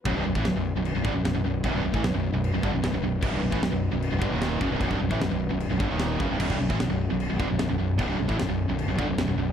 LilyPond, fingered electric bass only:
\new Staff \with { instrumentName = "Fingered electric bass" } { \clef bass \time 4/4 \tempo 4 = 151 b,,,16 c,,16 b,,,16 a,,16 b,,,16 b,,,8 b,,,8 b,,,16 g,,16 b,,,16 b,,,16 b,,,16 b,,,8 | b,,,16 c,,16 b,,,16 a,,16 b,,,16 b,,,8 b,,,8 b,,,16 g,,16 b,,,16 b,,,16 b,,,16 b,,,8 | b,,,16 c,,16 b,,,16 a,,16 b,,,16 b,,,8 b,,,8 b,,,16 g,,16 dis,,8. fis,,16 c,,16 | b,,,16 c,,16 b,,,16 a,,16 b,,,16 b,,,8 b,,,8 b,,,16 g,,16 dis,,8. fis,,16 c,,16 |
b,,,16 c,,16 b,,,16 a,,16 b,,,16 b,,,8 b,,,8 b,,,16 g,,16 b,,,16 b,,,16 b,,,16 b,,,8 | b,,,16 c,,16 b,,,16 a,,16 b,,,16 b,,,8 b,,,8 b,,,16 g,,16 b,,,16 b,,,16 b,,,16 b,,,8 | }